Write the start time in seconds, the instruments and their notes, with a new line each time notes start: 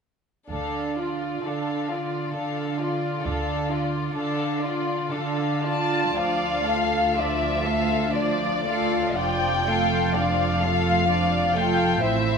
0.50 double bass section D2, cello section D3, viola section D4, violin section A4 F5
0.97 viola section F4, violin section F4 D5
1.44 cello section D3, viola section D4, violin section A4 F5
1.90 viola section F4, violin section F4 D5
2.35 cello section D3, viola section D4, violin section A4 F5
2.81 viola section F4, violin section F4 D5
3.25 double bass section D2, cello section D3, viola section D4, violin section A4 F5
3.71 viola section F4, violin section F4 D5
4.16 cello section D3, viola section D4, violin section A4 F5
4.63 viola section F4, violin section F4 D5
5.12 cello section D3, viola section D4, violin section A4 F5
5.64 violin section F4 D5 A5, viola section F4
6.16 double bass section D2, cello section D2, viola section F3 D4, violin section F4 D5 F5
6.67 viola section A3 F4, violin section A4 F5
7.16 viola section F3 D4, violin section F4 D5 E5
7.64 viola section A3 F4, violin section A4 F5
8.13 viola section F3 D4, violin section F4 D5
8.66 viola section A3 F4, violin section A4 F5
9.18 double bass section F1, cello section F2, viola section F3 D4, violin section F4 D5 G5
9.68 viola section A3 F4, violin section A4 F5
10.16 viola section F3 D4, violin section F4 D5 F5
10.63 viola section A3 F4, violin section A4 F5
11.10 viola section F3 D4, violin section F4 D5
11.57 viola section A3 F4, violin section A4 F5 G5
12.03 double bass section A1, cello section A2, viola section C4 E4, violin section C5 E5